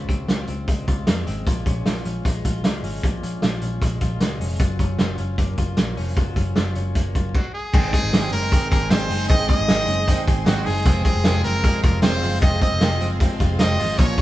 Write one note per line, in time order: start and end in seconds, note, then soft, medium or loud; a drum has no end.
0.00 1.46 C#3 medium
0.00 0.67 G#3 medium
0.00 0.28 F4 medium
0.08 0.25 C#2 medium
0.08 0.47 C4 medium
0.08 kick medium
0.08 closed hi-hat medium
0.28 0.45 C#2 medium
0.28 0.87 F4 medium
0.28 snare medium
0.28 closed hi-hat medium
0.48 0.65 C#2 medium
0.48 1.26 C4 medium
0.48 closed hi-hat medium
0.68 0.84 C#2 medium
0.68 1.07 G#3 soft
0.68 kick medium
0.68 closed hi-hat medium
0.88 1.04 C#2 medium
0.88 1.47 F4 medium
0.88 kick medium
0.88 closed hi-hat medium
1.07 1.23 F2 medium
1.07 2.25 G#3 medium
1.07 snare loud
1.07 closed hi-hat loud
1.27 1.43 G#1 medium
1.27 1.50 C4 medium
1.27 closed hi-hat medium
1.47 1.63 A#1 medium
1.47 3.02 A#2 medium
1.47 1.86 F4 medium
1.47 kick medium
1.47 closed hi-hat medium
1.66 1.82 A#1 loud
1.66 2.05 C#4 medium
1.66 kick medium
1.66 closed hi-hat medium
1.86 2.02 A#1 medium
1.86 2.45 F4 medium
1.86 snare medium
1.86 closed hi-hat medium
2.05 2.22 A#1 medium
2.05 2.84 C#4 medium
2.05 closed hi-hat medium
2.25 2.41 A#1 medium
2.25 2.63 G#3 medium
2.25 kick medium
2.25 closed hi-hat medium
2.45 2.64 A#1 medium
2.45 3.04 F4 medium
2.45 kick medium
2.45 closed hi-hat medium
2.64 2.80 C#2 medium
2.64 3.81 G#3 medium
2.64 snare loud
2.64 closed hi-hat medium
2.83 3.00 G#1 medium
2.83 3.23 C#4 medium
2.83 open hi-hat medium
3.03 3.19 A#1 medium
3.03 4.60 A#2 medium
3.03 3.43 F4 soft
3.03 kick medium
3.03 closed hi-hat medium
3.23 3.39 A#1 medium
3.23 3.62 C#4 medium
3.23 closed hi-hat medium
3.42 3.59 A#1 medium
3.42 4.01 F4 medium
3.42 snare loud
3.42 closed hi-hat medium
3.61 3.78 A#1 medium
3.61 4.40 C#4 medium
3.61 closed hi-hat medium
3.82 3.98 A#1 medium
3.82 4.20 G#3 medium
3.82 kick medium
3.82 closed hi-hat medium
4.01 4.18 A#1 medium
4.01 4.60 F4 medium
4.01 kick medium
4.01 closed hi-hat medium
4.20 4.37 C#2 medium
4.20 4.64 G#3 medium
4.20 snare medium
4.20 closed hi-hat medium
4.40 4.56 F1 medium
4.40 4.80 C#4 medium
4.40 open hi-hat medium
4.59 4.76 F#1 medium
4.59 6.16 F#3 medium
4.59 4.98 F4 medium
4.59 kick loud
4.59 closed hi-hat medium
4.79 4.95 F#1 medium
4.79 5.18 C#4 medium
4.79 kick medium
4.79 closed hi-hat medium
4.99 5.15 F#1 medium
4.99 5.57 F4 medium
4.99 snare loud
4.99 closed hi-hat medium
5.18 5.35 F#1 loud
5.18 5.96 C#4 soft
5.18 closed hi-hat medium
5.38 5.54 F#1 medium
5.38 5.77 A#3 medium
5.38 kick medium
5.38 closed hi-hat medium
5.57 5.74 F#1 medium
5.57 6.16 F4 medium
5.57 kick medium
5.57 closed hi-hat medium
5.77 5.94 A#1 medium
5.77 6.95 A#3 medium
5.77 snare loud
5.77 closed hi-hat medium
5.97 6.13 F1 medium
5.97 6.36 C#4 medium
5.97 open hi-hat medium
6.16 6.33 F#1 medium
6.16 7.38 F#3 medium
6.16 6.55 F4 medium
6.16 kick medium
6.16 closed hi-hat medium
6.36 6.52 F#1 medium
6.36 6.75 C#4 medium
6.36 kick medium
6.36 closed hi-hat medium
6.56 6.72 F#1 medium
6.56 7.14 F4 medium
6.56 snare loud
6.56 closed hi-hat medium
6.75 6.92 F#1 medium
6.75 7.38 C#4 medium
6.75 closed hi-hat medium
6.95 7.12 F#1 medium
6.95 7.39 A#3 soft
6.95 kick medium
6.95 closed hi-hat medium
7.15 7.31 F#1 medium
7.15 7.39 F4 medium
7.15 kick medium
7.15 closed hi-hat medium
7.35 7.53 F#4 medium
7.35 kick loud
7.35 crash medium
7.54 7.90 G#4 medium
7.72 7.90 G#1 medium
7.72 7.93 G#2 medium
7.72 9.29 G#2 medium
7.72 7.93 D#3 medium
7.72 7.93 G#3 medium
7.72 7.92 C4 medium
7.72 7.90 D#4 medium
7.72 10.83 G#4 medium
7.72 8.13 G#4 medium
7.72 13.95 C5 medium
7.72 10.83 D#5 medium
7.72 13.95 C6 medium
7.72 kick loud
7.72 crash loud
7.91 8.13 G#3 soft
7.91 8.13 C4 soft
7.91 8.12 D#4 medium
7.91 8.32 D#4 medium
7.91 8.30 G#4 loud
7.91 kick medium
7.91 closed hi-hat medium
8.03 8.11 G#1 medium
8.13 8.33 G#1 loud
8.13 8.32 G#2 medium
8.13 8.32 D#3 medium
8.13 8.33 G#3 medium
8.13 8.32 C4 medium
8.13 8.30 D#4 medium
8.13 8.23 F#4 medium
8.13 snare loud
8.13 closed hi-hat medium
8.23 8.70 G#4 medium
8.31 8.56 F#1 medium
8.31 8.51 G#3 soft
8.31 8.52 C4 soft
8.31 8.43 C#4 medium
8.31 8.51 D#4 medium
8.31 8.69 A#4 loud
8.31 closed hi-hat medium
8.43 8.90 D#4 medium
8.51 8.89 D#3 medium
8.51 8.91 G#3 medium
8.51 10.07 C4 medium
8.51 8.91 C4 medium
8.51 8.91 D#4 medium
8.51 kick loud
8.51 closed hi-hat loud
8.71 8.88 G#1 medium
8.71 9.10 G#4 medium
8.71 8.92 A#4 loud
8.71 kick medium
8.71 closed hi-hat medium
8.90 9.07 G#1 medium
8.90 9.10 G#2 medium
8.90 9.10 D#3 medium
8.90 9.10 G#3 loud
8.90 9.10 C4 medium
8.90 9.48 D#4 medium
8.90 9.08 D#4 medium
8.90 9.28 C5 loud
8.90 snare loud
8.90 closed hi-hat loud
9.09 9.26 F#1 loud
9.09 9.29 G#3 medium
9.09 9.30 C4 medium
9.09 9.29 D#4 medium
9.09 9.30 G#4 medium
9.09 open hi-hat medium
9.29 9.46 G#1 loud
9.29 9.49 G#2 medium
9.29 10.85 G#2 medium
9.29 9.49 D#3 medium
9.29 9.49 G#3 medium
9.29 9.49 C4 medium
9.29 9.47 D#4 loud
9.29 9.69 G#4 medium
9.29 9.47 D#5 loud
9.29 kick loud
9.29 closed hi-hat loud
9.48 9.68 G#3 soft
9.48 9.69 C4 medium
9.48 9.68 D#4 medium
9.48 9.88 D#4 medium
9.48 10.23 D#5 loud
9.48 kick loud
9.48 closed hi-hat medium
9.59 9.67 G#1 loud
9.68 9.85 G#1 loud
9.68 9.88 G#2 medium
9.68 9.88 D#3 medium
9.68 9.89 G#3 medium
9.68 9.88 C4 medium
9.68 9.86 D#4 medium
9.68 10.27 G#4 medium
9.68 snare loud
9.68 closed hi-hat medium
9.87 10.12 F#1 loud
9.87 10.06 G#3 soft
9.87 10.07 C4 medium
9.87 9.98 C#4 medium
9.87 10.07 D#4 medium
9.87 closed hi-hat medium
9.98 10.46 D#4 medium
10.06 10.45 D#3 medium
10.06 10.46 G#3 medium
10.06 11.05 C4 medium
10.06 10.47 C4 medium
10.06 10.46 D#4 medium
10.06 kick medium
10.06 closed hi-hat loud
10.27 10.44 G#1 medium
10.27 10.66 G#4 medium
10.27 kick medium
10.27 closed hi-hat medium
10.45 10.63 G#1 loud
10.45 10.66 G#2 medium
10.45 10.66 D#3 medium
10.45 10.66 G#3 medium
10.45 10.65 C4 medium
10.45 10.90 D#4 medium
10.45 10.63 D#4 loud
10.45 10.67 F#4 medium
10.45 snare loud
10.45 closed hi-hat loud
10.64 10.83 F#1 loud
10.64 10.85 G#3 soft
10.64 10.86 C4 medium
10.64 10.85 D#4 medium
10.64 11.03 G#4 loud
10.64 10.86 G#4 medium
10.64 open hi-hat medium
10.85 11.02 F1 loud
10.85 11.05 F2 medium
10.85 12.41 F2 medium
10.85 11.05 C3 medium
10.85 11.06 F3 medium
10.85 11.04 G#3 medium
10.85 11.03 C4 loud
10.85 11.25 F4 medium
10.85 13.96 G#4 medium
10.85 14.22 F5 medium
10.85 kick loud
10.85 closed hi-hat loud
11.04 11.24 F3 soft
11.04 11.24 G#3 medium
11.04 11.24 C4 medium
11.04 11.43 C4 medium
11.04 11.41 G#4 loud
11.04 kick medium
11.04 closed hi-hat medium
11.15 11.23 F1 loud
11.23 11.41 F1 loud
11.23 11.44 F2 medium
11.23 11.44 C3 medium
11.23 11.45 F3 medium
11.23 11.43 G#3 medium
11.23 11.41 C4 medium
11.23 11.83 F4 medium
11.23 snare loud
11.23 closed hi-hat medium
11.42 11.69 F#1 loud
11.42 11.62 F3 soft
11.42 11.64 G#3 medium
11.42 11.63 C4 medium
11.42 12.01 C4 medium
11.42 11.81 A#4 loud
11.42 closed hi-hat medium
11.62 12.02 C3 medium
11.62 12.03 F3 medium
11.62 13.20 G#3 medium
11.62 12.03 G#3 medium
11.62 12.04 C4 medium
11.62 kick loud
11.62 closed hi-hat loud
11.83 12.00 F1 loud
11.83 12.22 F4 medium
11.83 12.01 A#4 medium
11.83 kick loud
11.83 closed hi-hat medium
12.02 12.19 F1 medium
12.02 12.23 F2 medium
12.02 12.23 C3 medium
12.02 12.23 F3 medium
12.02 12.23 G#3 medium
12.02 12.61 C4 medium
12.02 12.21 C4 medium
12.02 12.39 C5 loud
12.02 snare loud
12.02 closed hi-hat loud
12.22 12.39 F#1 loud
12.22 12.42 F3 soft
12.22 12.42 G#3 medium
12.22 12.42 C4 medium
12.22 12.43 F4 medium
12.22 open hi-hat medium
12.41 12.58 F1 loud
12.41 12.61 F2 medium
12.41 13.99 F2 medium
12.41 12.62 C3 loud
12.41 12.62 F3 loud
12.41 12.61 G#3 medium
12.41 12.59 C4 medium
12.41 12.81 F4 medium
12.41 12.60 D#5 loud
12.41 kick loud
12.41 closed hi-hat loud
12.60 12.80 F3 soft
12.60 12.82 G#3 medium
12.60 12.81 C4 medium
12.60 13.00 C4 medium
12.60 13.09 D#5 loud
12.60 kick medium
12.60 closed hi-hat medium
12.72 12.80 F1 loud
12.80 12.98 F1 loud
12.80 13.00 F2 medium
12.80 13.01 C3 medium
12.80 13.01 F3 medium
12.80 13.01 G#3 medium
12.80 12.99 C4 medium
12.80 13.40 F4 medium
12.80 snare loud
12.80 closed hi-hat medium
13.00 13.25 F#1 loud
13.00 13.20 F3 soft
13.00 13.21 G#3 soft
13.00 13.20 C4 medium
13.00 13.59 C4 medium
13.00 closed hi-hat medium
13.20 13.58 C3 medium
13.20 13.60 F3 medium
13.20 14.03 G#3 medium
13.20 13.59 G#3 medium
13.20 13.60 C4 medium
13.20 kick loud
13.20 closed hi-hat loud
13.40 13.56 F1 medium
13.40 13.79 F4 medium
13.40 kick medium
13.40 closed hi-hat medium
13.59 13.79 F1 medium
13.59 13.79 F2 medium
13.59 13.79 C3 medium
13.59 13.79 F3 loud
13.59 13.79 G#3 medium
13.59 14.03 C4 medium
13.59 13.77 C4 medium
13.59 14.00 D#5 loud
13.59 snare loud
13.59 closed hi-hat loud
13.78 13.95 G#1 medium
13.78 13.97 F3 soft
13.78 13.99 G#3 medium
13.78 13.98 C4 medium
13.78 13.99 F4 medium
13.78 open hi-hat medium
13.98 14.15 A#1 loud
13.98 14.18 A#2 medium
13.98 14.22 A#2 medium
13.98 14.18 F3 medium
13.98 14.17 A#3 loud
13.98 14.15 C#4 medium
13.98 14.22 F4 medium
13.98 14.22 A#4 medium
13.98 14.22 C#5 loud
13.98 14.22 C#5 medium
13.98 14.22 C#6 medium
13.98 kick loud
13.98 closed hi-hat loud
14.16 14.22 A#3 medium
14.16 14.22 C#4 medium
14.16 kick medium
14.16 closed hi-hat medium